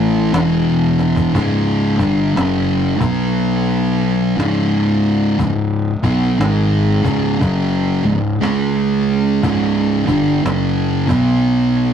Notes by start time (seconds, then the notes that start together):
Already playing: A1 A2 E3 A3
0.16 cajon slap
0.33 E1 E2 B2 E3, cajon slap
0.99 cajon slap
1.16 cajon bass
1.34 C#1 C#2 G#2 C#3, cajon bass
1.98 G1 G2 D3 G3, cajon bass
2.35 F#1 F#2 C#3 F#3, cajon slap
2.99 B1 B2 F#3 B3, cajon bass
3.38 cajon slap
4.02 cajon slap
4.37 C#1 C#2 G#2 C#3, cajon slap
5.03 cajon slap
5.39 C#1 C#2 G#2, cajon bass, cajon slap
6.03 B1 B2 F#3 B3, cajon bass
6.39 G#1 G#2 D#3 G#3, cajon slap
7.03 C#1 C#2 G#2 C#3, cajon bass
7.40 F#1 F#2 C#3 F#3, cajon bass
8.04 C#1 C#2 G#2, cajon slap
8.41 C#2 C#3 G#3 C#4, cajon slap
9.08 cajon slap
9.43 C#1 C#2 G#2 C#3, cajon bass
10.06 G1 G2 D3 G3, cajon bass
10.43 F#1 F#2 C#3 F#3, cajon slap
11.07 B1 B2 F#3 B3, cajon bass
11.46 cajon slap